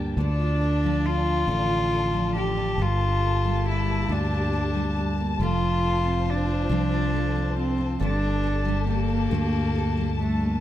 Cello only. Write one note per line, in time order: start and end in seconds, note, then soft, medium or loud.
0.21 1.08 D4 medium
1.07 2.36 F4 loud
2.37 2.83 G4 medium
2.82 3.67 F4 loud
3.69 4.13 E4 medium
4.12 5.08 D4 medium
5.42 6.31 F4 medium
6.30 7.59 D4 medium
7.59 7.99 C4 medium
8.03 8.85 D4 medium
8.89 10.15 A#3 medium
10.20 10.60 A3 medium